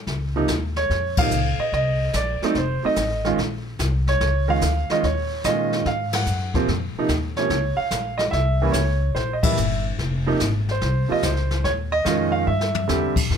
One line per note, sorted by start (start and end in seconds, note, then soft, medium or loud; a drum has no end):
0.07 0.47 C#2 medium
0.07 brush sweep soft
0.07 kick soft
0.07 snare soft
0.36 0.48 C3 medium
0.36 0.48 F3 medium
0.36 0.48 A#3 medium
0.36 0.48 D#4 medium
0.48 0.89 D#2 medium
0.48 kick soft
0.48 snare medium
0.48 hi-hat pedal soft
0.76 1.19 C#5 medium
0.76 snare soft
0.90 1.30 F2 medium
0.90 brush sweep soft
0.90 kick soft
0.90 snare soft
1.17 1.31 C3 medium
1.17 1.31 F3 medium
1.17 1.31 A#3 medium
1.17 1.57 F5 loud
1.17 kick medium
1.17 ride medium
1.21 1.32 D#4 medium
1.31 1.57 C#2 medium
1.31 hi-hat pedal soft
1.58 1.72 D#5 medium
1.58 muted upright bass stroke soft
1.72 2.12 C2 medium
1.72 2.12 D#5 medium
1.72 brush sweep soft
1.72 kick soft
1.72 snare soft
2.13 2.39 A#1 medium
2.13 2.57 D5 medium
2.13 kick soft
2.13 snare medium
2.13 hi-hat pedal medium
2.41 2.55 F#3 medium
2.41 2.55 A3 medium
2.41 2.55 C4 medium
2.41 2.56 D#4 medium
2.41 muted upright bass stroke soft
2.41 snare soft
2.55 2.81 F1 medium
2.55 2.85 C5 medium
2.55 brush sweep soft
2.55 kick soft
2.55 snare soft
2.83 2.95 F#3 medium
2.83 2.96 A3 medium
2.83 2.96 C4 medium
2.83 2.96 D#4 medium
2.83 3.23 D#5 medium
2.83 muted upright bass stroke soft
2.96 3.36 A1 medium
2.96 kick soft
2.96 snare medium
2.96 hi-hat pedal medium
3.25 3.37 D#3 medium
3.25 3.37 G#3 medium
3.25 3.37 C#4 medium
3.25 3.38 F4 medium
3.25 snare soft
3.38 3.78 A#1 medium
3.38 brush sweep soft
3.38 kick soft
3.38 snare soft
3.79 4.19 C2 medium
3.79 kick soft
3.79 snare medium
3.79 hi-hat pedal medium
4.07 4.46 C#5 medium
4.07 snare soft
4.21 4.61 C#2 medium
4.21 brush sweep medium
4.21 kick soft
4.21 snare soft
4.48 4.60 D#3 medium
4.48 4.61 G#3 medium
4.48 4.61 C#4 medium
4.48 4.61 F4 medium
4.48 4.92 F5 loud
4.61 4.87 D2 medium
4.61 kick soft
4.61 snare medium
4.61 hi-hat pedal medium
4.90 5.02 D#3 medium
4.90 5.03 G#3 medium
4.90 5.03 C#4 medium
4.90 5.03 F4 medium
4.90 5.03 D#5 medium
4.90 snare soft
5.03 5.43 D#2 medium
5.03 5.46 C#5 medium
5.03 brush sweep soft
5.03 kick soft
5.03 snare soft
5.44 5.85 A#2 medium
5.44 5.86 D#3 medium
5.44 5.87 G#3 medium
5.44 5.87 C#4 medium
5.44 5.87 F4 medium
5.44 5.87 D#5 medium
5.44 kick soft
5.44 snare medium
5.44 hi-hat pedal medium
5.73 snare soft
5.86 6.25 G#2 medium
5.86 6.15 F5 medium
5.86 brush sweep soft
5.86 kick soft
5.86 snare soft
6.13 6.53 F#5 medium
6.13 snare medium
6.13 ride medium
6.26 6.67 F#2 medium
6.26 hi-hat pedal medium
6.54 6.67 C3 medium
6.54 6.67 F3 medium
6.54 6.68 A#3 medium
6.54 6.68 C4 medium
6.54 kick soft
6.54 snare soft
6.68 6.94 F2 medium
6.68 brush sweep soft
6.68 kick soft
6.68 snare soft
6.95 7.10 C3 medium
6.95 7.10 F3 medium
6.95 7.10 A#3 medium
6.95 7.10 D#4 medium
6.95 muted upright bass stroke soft
7.09 7.49 D#2 medium
7.09 kick soft
7.09 snare medium
7.09 hi-hat pedal soft
7.36 7.50 C3 medium
7.36 7.50 F3 medium
7.36 7.51 A#3 medium
7.36 7.51 C#4 medium
7.36 7.80 C#5 medium
7.36 snare soft
7.50 7.76 C#2 medium
7.50 brush sweep soft
7.50 kick soft
7.50 snare soft
7.77 8.16 F5 medium
7.77 muted upright bass stroke soft
7.91 8.32 A#1 medium
7.91 kick soft
7.91 snare medium
7.91 hi-hat pedal medium
8.18 8.23 D#5 medium
8.18 snare soft
8.31 8.73 C2 medium
8.31 8.75 E5 medium
8.31 brush sweep soft
8.31 kick soft
8.31 snare soft
8.62 8.74 E3 medium
8.62 8.74 G3 medium
8.62 8.74 A#3 medium
8.62 8.75 C#4 medium
8.72 9.15 C#2 medium
8.72 9.12 C#5 medium
8.72 kick soft
8.72 snare medium
8.72 hi-hat pedal medium
9.15 9.56 A#1 medium
9.15 9.35 C5 medium
9.15 brush sweep soft
9.15 kick soft
9.15 snare soft
9.33 9.44 D#5 medium
9.43 9.56 E3 medium
9.43 9.56 G3 medium
9.43 9.57 A#3 medium
9.43 9.57 E4 medium
9.43 9.82 E5 medium
9.43 kick medium
9.43 ride medium
9.57 9.98 G1 medium
9.57 hi-hat pedal medium
9.98 10.39 F1 medium
9.98 brush sweep soft
9.98 kick soft
9.98 snare soft
10.26 10.39 C3 medium
10.26 10.39 F3 medium
10.26 10.40 A#3 medium
10.26 10.40 D#4 medium
10.40 10.80 G#1 medium
10.40 kick soft
10.40 snare medium
10.40 hi-hat pedal medium
10.68 11.13 C5 medium
10.68 snare soft
10.81 11.08 C2 medium
10.81 brush sweep medium
10.81 kick soft
10.81 snare soft
11.09 11.22 C3 medium
11.09 11.22 F3 medium
11.09 11.22 A#3 medium
11.09 11.23 F4 medium
11.09 11.24 D#5 medium
11.09 muted upright bass stroke soft
11.22 11.63 C#2 medium
11.22 11.66 C5 medium
11.22 kick soft
11.22 snare medium
11.22 hi-hat pedal medium
11.37 snare soft
11.51 snare soft
11.64 12.05 D#2 medium
11.64 11.71 C#5 medium
11.64 brush sweep medium
11.64 kick soft
11.64 snare soft
11.92 12.31 D#5 loud
12.05 12.46 F2 medium
12.05 12.47 D#3 medium
12.05 12.47 G#3 medium
12.05 12.48 C#4 medium
12.05 12.48 F4 medium
12.05 kick soft
12.05 snare medium
12.05 hi-hat pedal soft
12.32 12.46 F5 medium
12.47 12.88 G2 medium
12.47 13.13 E5 medium
12.61 snare soft
12.75 floor tom medium
12.88 13.29 E2 medium
12.88 13.13 D3 medium
12.88 13.13 G3 medium
12.88 13.14 C4 medium
12.88 13.14 G4 medium
12.88 snare medium
12.88 hi-hat pedal soft
13.16 kick medium
13.16 crash medium
13.30 13.37 F2 medium
13.30 brush sweep soft
13.30 kick soft
13.30 snare soft